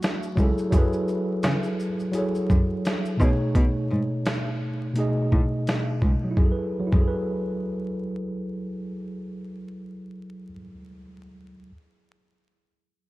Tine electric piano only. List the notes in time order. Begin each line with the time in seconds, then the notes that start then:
0.35 F#3 E4
0.40 G#4 A4
0.71 F#3 E4 G#4
0.76 A4 B4
2.12 F#3 E4 G#4
2.17 A4 C#5
3.17 B2 A3 D#4
3.22 G#4 C#5
4.93 B2 A3 D#4
4.99 G#4 D#5
6.24 F#3
6.31 E4
6.38 G#4
6.45 A4
6.52 B4
6.80 F#3
6.87 E4
6.94 G#4
7.01 A4
7.08 B4